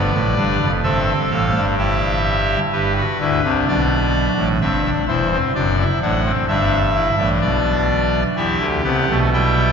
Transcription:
0.00 0.10 G1 medium
0.00 0.10 G2 medium
0.00 0.19 B3 medium
0.00 0.71 B4 medium
0.00 0.72 D5 medium
0.13 0.34 A1 medium
0.13 0.34 A2 medium
0.36 0.57 G1 medium
0.36 0.57 G2 medium
0.36 0.66 D4 medium
0.60 0.81 F1 medium
0.60 0.81 F2 medium
0.83 1.13 G1 medium
0.83 1.13 G2 medium
0.83 1.45 C4 medium
0.83 1.65 A4 medium
0.83 1.13 E5 medium
1.31 1.52 A1 medium
1.31 1.52 A2 medium
1.31 1.61 F5 medium
1.55 2.57 G1 medium
1.55 2.57 G2 medium
1.55 1.76 D4 medium
1.78 2.60 E4 medium
1.78 2.60 G4 medium
1.78 2.60 E5 medium
2.72 3.02 G1 medium
2.72 3.02 G2 medium
2.72 2.93 G4 medium
2.72 3.54 B4 medium
2.96 3.17 F#4 medium
3.20 3.41 D2 medium
3.20 3.40 D3 medium
3.20 3.41 E4 medium
3.44 3.64 C2 medium
3.44 3.64 C3 medium
3.44 4.45 D4 medium
3.68 4.28 B1 medium
3.68 4.28 B2 medium
3.68 4.48 D5 medium
4.37 4.58 A1 medium
4.37 4.58 A2 medium
4.61 4.90 G1 medium
4.61 4.90 G2 medium
4.61 4.81 C4 medium
4.61 4.90 E5 medium
4.84 5.05 D4 medium
5.07 5.37 E1 medium
5.07 5.37 E2 medium
5.07 5.28 E4 medium
5.07 5.37 C5 medium
5.32 5.52 C4 medium
5.55 5.84 F#1 medium
5.55 5.84 F#2 medium
5.55 5.75 D4 medium
5.55 5.84 D5 medium
5.79 5.99 E4 medium
6.02 6.31 A1 medium
6.02 6.31 A2 medium
6.02 6.22 D4 medium
6.02 6.31 F#5 medium
6.25 6.46 C4 medium
6.48 7.09 G1 loud
6.48 7.09 G2 medium
6.48 6.78 D4 medium
6.48 7.29 E5 medium
6.95 7.15 E4 medium
7.18 7.39 A1 medium
7.18 7.39 A2 medium
7.18 8.20 D4 medium
7.41 8.23 B1 medium
7.41 8.23 B2 medium
7.41 8.23 D5 medium
8.36 8.57 E2 medium
8.36 8.57 E3 medium
8.36 8.66 E4 medium
8.36 9.19 G4 medium
8.36 8.66 E5 medium
8.60 8.81 D2 medium
8.60 8.81 D3 medium
8.84 9.05 C2 medium
8.84 9.05 C3 medium
8.84 9.05 B3 medium
8.84 9.14 F#5 medium
9.08 9.72 B1 medium
9.08 9.72 B2 medium
9.08 9.30 A3 medium
9.33 9.72 G3 medium
9.33 9.72 E4 medium
9.33 9.72 G5 medium

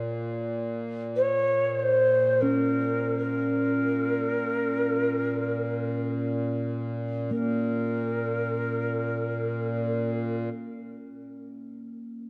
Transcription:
0.00 7.30 A#2 medium
1.16 1.79 C#5 medium
1.79 2.42 C5 medium
1.79 1.84 C#5 medium
2.41 7.76 C#4 medium
2.41 3.17 A#4 medium
3.18 6.17 A#4 medium
7.31 10.50 A#2 medium
7.31 10.49 A#3 medium
7.31 10.49 A#4 medium

